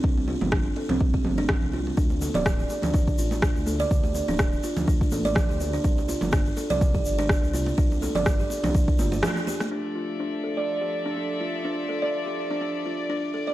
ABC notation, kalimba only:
X:1
M:4/4
L:1/16
Q:"Swing 16ths" 1/4=124
K:Dm
V:1 name="Kalimba"
D z F z D z A C z G z D z2 F z | D z A d z G z D D z F z D z A d | z G z D z2 F z D z A d z G z D | D z F z D z A d z G z D z2 F z |
D z A d z G z D D z F z A, z G A, | D z F z D z A d z G z D D z F z | D z A d z G z D D z F z D z A d |]